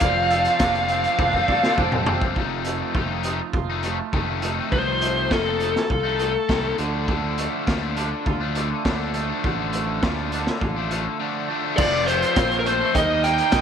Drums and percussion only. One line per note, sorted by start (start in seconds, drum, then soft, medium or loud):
0.00 kick loud
0.00 closed hi-hat loud
0.30 closed hi-hat medium
0.45 closed hi-hat soft
0.59 kick loud
0.59 snare loud
0.59 closed hi-hat loud
0.75 closed hi-hat soft
0.89 closed hi-hat medium
1.04 closed hi-hat soft
1.19 kick loud
1.33 kick medium
1.48 kick medium
1.64 snare medium
1.78 kick loud
1.92 mid tom medium
2.06 floor tom loud
2.21 kick loud
2.36 kick loud
2.65 closed hi-hat medium
2.95 kick loud
3.23 closed hi-hat medium
3.53 kick loud
3.83 closed hi-hat medium
4.13 kick loud
4.42 closed hi-hat medium
4.72 kick loud
5.01 closed hi-hat medium
5.31 kick loud
5.31 snare loud
5.60 closed hi-hat medium
5.76 snare medium
5.90 kick loud
6.19 closed hi-hat medium
6.49 kick loud
6.49 snare loud
6.78 closed hi-hat medium
7.08 kick loud
7.38 closed hi-hat medium
7.67 kick loud
7.67 snare loud
7.97 closed hi-hat medium
8.26 kick loud
8.55 closed hi-hat medium
8.85 kick loud
8.85 snare loud
9.14 closed hi-hat medium
9.44 kick loud
9.73 closed hi-hat medium
10.03 kick loud
10.03 snare loud
10.32 closed hi-hat medium
10.47 snare medium
10.61 kick medium
10.91 closed hi-hat medium
11.78 kick loud
11.78 crash loud
12.08 closed hi-hat medium
12.22 closed hi-hat medium
12.36 kick loud
12.36 snare loud
12.36 closed hi-hat loud
12.52 closed hi-hat medium
12.66 closed hi-hat medium
12.95 kick loud
12.95 closed hi-hat loud
13.24 closed hi-hat medium
13.38 closed hi-hat medium
13.52 kick loud
13.52 snare loud
13.52 closed hi-hat loud